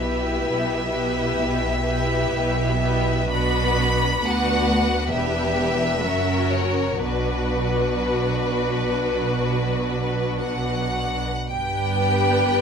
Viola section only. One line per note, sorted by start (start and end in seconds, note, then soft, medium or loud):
0.00 0.88 B3 soft
0.00 0.88 E4 soft
0.89 1.80 B3 soft
0.89 1.80 E4 soft
1.81 2.77 B3 soft
1.81 2.77 E4 soft
2.80 3.29 B3 soft
2.80 3.29 E4 soft
3.31 4.17 B3 soft
3.31 4.17 D4 soft
4.21 5.07 B3 soft
4.21 5.07 D4 soft
5.08 5.99 B3 soft
5.08 5.99 D4 soft
6.00 7.00 F#3 soft
6.00 7.03 C#4 soft
7.02 11.25 F#3 soft
7.02 11.26 D4 soft
11.50 12.61 B3 soft
11.50 12.61 D4 soft